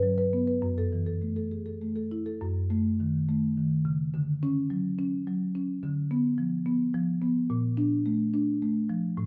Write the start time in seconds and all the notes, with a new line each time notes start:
Already playing: G2 B4
0.03 F#3
0.18 B4
0.33 B3
0.47 B4
0.62 F#2
0.78 A4
0.92 E3
1.06 A4
1.22 A3
1.36 A4
1.51 G#4
1.66 A4
1.82 A3
1.96 A4
2.12 E4
2.26 A4
2.41 F#2
2.70 A3
3.00 D#3
3.29 A3
3.57 D#3
3.85 C#3
4.14 D3
4.43 C#4
4.70 F#3
4.99 C#4
5.27 F#3
5.55 C#4
5.83 D3
6.11 B3
6.38 F3
6.66 B3
6.94 F3
7.22 B3
7.50 A#2
7.77 D4
8.06 A3
8.34 D4
8.62 A3
8.90 F3
9.17 A2